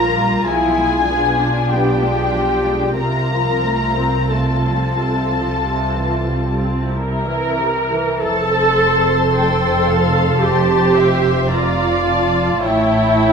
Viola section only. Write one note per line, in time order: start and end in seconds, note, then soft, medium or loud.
0.00 0.18 F3 soft
0.00 2.93 F4 medium
0.18 0.48 G3 soft
0.47 0.75 F3 soft
0.78 1.09 G#3 soft
1.09 1.40 B3 soft
1.40 1.71 D4 soft
1.73 2.03 B3 soft
2.03 2.34 G#3 soft
2.34 2.66 F3 soft
2.65 2.98 G#3 soft
2.98 3.28 C3 soft
2.98 6.88 F4 soft
3.31 3.64 F3 soft
3.64 3.97 A3 soft
3.98 4.31 C4 soft
4.32 4.65 A3 soft
4.65 4.98 F3 soft
4.98 5.31 C3 soft
5.31 5.63 F3 soft
5.63 5.93 C3 soft
5.95 6.27 E3 soft
6.28 6.60 G3 soft
6.61 6.93 C4 soft
6.92 7.25 G3 soft
6.92 8.00 E4 soft
6.92 8.17 A#4 medium
7.26 7.59 E3 soft
7.59 7.91 C3 soft
7.92 8.21 E3 soft
8.22 9.35 A4 medium
9.36 10.41 A4 medium
10.42 11.51 G4 medium
11.52 12.60 F4 medium
12.62 13.33 E4 medium